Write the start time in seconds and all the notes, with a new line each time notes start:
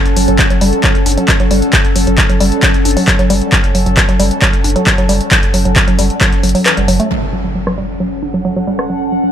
Already playing: C#4 A4 F#5 A5
0.06 F#1, closed hi-hat
0.16 F#1 F#3, open hi-hat
0.28 F#1 F#3, closed hi-hat
0.39 F#3, kick, clap, closed hi-hat
0.50 F#1 F#3, closed hi-hat
0.61 F#1 G3, open hi-hat
0.73 closed hi-hat
0.84 F#3, kick, clap, closed hi-hat
0.95 F#1, closed hi-hat
1.06 F#1 D4, open hi-hat
1.12 closed hi-hat
1.17 F#3, closed hi-hat
1.28 F#3, kick, clap, closed hi-hat
1.40 F#1 F#3, closed hi-hat
1.51 F#1 G3, open hi-hat
1.62 closed hi-hat
1.73 F#3, kick, clap, closed hi-hat
1.85 F#1, closed hi-hat
1.96 F#1 F#3, open hi-hat
2.07 F#1 F#3, closed hi-hat
2.18 F#3, kick, clap, closed hi-hat
2.30 F#1 F#3, closed hi-hat
2.40 F#1 G3, open hi-hat
2.52 closed hi-hat
2.63 F#3, kick, clap, closed hi-hat
2.74 F#1, closed hi-hat
2.85 F#1 D4, open hi-hat
2.91 closed hi-hat
2.97 F#3, open hi-hat
3.08 F#3, kick, clap, closed hi-hat
3.19 F#1 F#3, closed hi-hat
3.30 F#1 G3, open hi-hat
3.42 closed hi-hat
3.52 F#3, kick, clap, closed hi-hat
3.64 F#1, closed hi-hat
3.75 F#1 F#3, open hi-hat
3.86 F#1 F#3, closed hi-hat
3.97 F#3, kick, clap, closed hi-hat
4.09 F#1 F#3, closed hi-hat
4.20 F#1 G3, open hi-hat
4.31 closed hi-hat
4.42 F#3, kick, clap, closed hi-hat
4.53 F#1, closed hi-hat
4.64 F#1 D4, open hi-hat
4.70 closed hi-hat
4.76 F#3, closed hi-hat
4.87 F#3, kick, clap, closed hi-hat
4.98 F#1 F#3, closed hi-hat
5.09 F#1 G3, open hi-hat
5.21 closed hi-hat
5.31 F#3, kick, clap, closed hi-hat
5.43 F#1, closed hi-hat
5.54 F#1 F#3, open hi-hat
5.65 F#1 F#3, closed hi-hat
5.76 F#3, kick, clap, closed hi-hat
5.88 F#1 F#3, closed hi-hat
5.99 F#1 G3, open hi-hat
6.10 closed hi-hat
6.21 F#3, kick, clap, closed hi-hat
6.32 F#1, closed hi-hat
6.43 F#1 F#3, open hi-hat
6.49 closed hi-hat
6.55 F#3, open hi-hat
6.66 E3, clap, closed hi-hat
6.77 F#1 G3, closed hi-hat
6.88 F#1 F#3, open hi-hat
7.00 A3, closed hi-hat
7.11 F#3 C#4, impact
7.33 F#3
7.42 F#3 A4
7.55 F#3
7.60 F#5
7.67 F#3, cross-stick
7.78 G3 A5
8.00 F#3
8.23 D4
8.34 F#3
8.45 F#3
8.56 F#3
8.67 G3
8.79 cross-stick
8.90 F#3
9.12 F#3
9.24 F#3